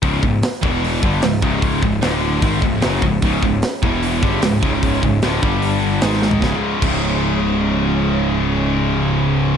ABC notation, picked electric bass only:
X:1
M:4/4
L:1/8
Q:1/4=150
K:C#phr
V:1 name="Picked electric bass" clef=bass
C,,, C,,, z E,,,2 =G,,, C,,, C,,,- | C,,, C,,, D,,,2 G,,, C,,, F,,, C,,, | C,,, C,,, z E,,,2 =G,,, C,,, C,,,- | C,,, C,,, D,,, =G,,,3 ^G,,,2 |
C,,, z C,,,6- | C,,,8 |]